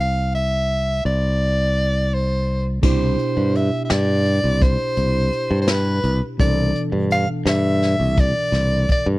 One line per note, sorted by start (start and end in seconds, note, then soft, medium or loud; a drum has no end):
0.00 1.02 C2 medium
0.00 0.33 F5 medium
0.34 1.02 E5 medium
1.05 2.80 C2 medium
1.05 2.15 D5 medium
2.14 2.67 C5 medium
2.81 3.15 C2 medium
2.81 6.35 B2 medium
2.81 6.35 D4 medium
2.81 6.35 E4 soft
2.81 6.36 G4 medium
2.81 3.57 C5 medium
2.81 kick medium
2.81 crash medium
3.19 closed hi-hat medium
3.37 3.69 G2 medium
3.55 3.84 E5 medium
3.55 closed hi-hat medium
3.84 3.92 E5 medium
3.90 4.39 G2 medium
3.90 4.64 D5 medium
3.90 snare medium
3.90 closed hi-hat medium
4.25 closed hi-hat medium
4.44 4.76 C2 medium
4.62 5.61 C5 medium
4.62 kick medium
4.62 closed hi-hat medium
4.97 5.29 C2 medium
4.97 closed hi-hat medium
5.32 closed hi-hat medium
5.51 5.99 G2 medium
5.62 5.72 C5 medium
5.68 6.23 B4 medium
5.68 snare medium
5.68 closed hi-hat medium
6.03 6.20 C2 medium
6.03 closed hi-hat medium
6.38 6.72 C2 medium
6.38 9.19 B2 medium
6.38 9.19 E3 medium
6.38 9.19 D4 soft
6.38 9.19 A4 medium
6.38 6.81 D5 medium
6.38 kick medium
6.38 closed hi-hat medium
6.75 closed hi-hat medium
6.92 7.25 G2 medium
7.11 7.28 F5 medium
7.11 closed hi-hat medium
7.46 7.94 G2 medium
7.46 8.21 E5 medium
7.46 snare medium
7.46 closed hi-hat medium
7.82 snare soft
7.82 closed hi-hat medium
8.00 8.32 C2 medium
8.17 8.90 D5 medium
8.17 kick medium
8.17 closed hi-hat medium
8.52 8.85 C2 medium
8.52 snare soft
8.52 closed hi-hat medium
8.89 9.07 D5 medium
8.89 kick medium
8.89 closed hi-hat medium
9.06 9.19 G2 medium